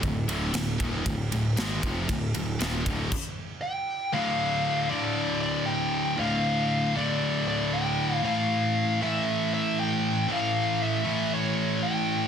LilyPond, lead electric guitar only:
\new Staff \with { instrumentName = "Lead electric guitar" } { \time 4/4 \key d \minor \tempo 4 = 117 r1 | r2. g''4 | f''4. d''4 d''8 g''4 | f''4. d''4 d''8 g''4 |
f''4. e''4 e''8 g''4 | f''4 e''4 cis''4 g''4 | }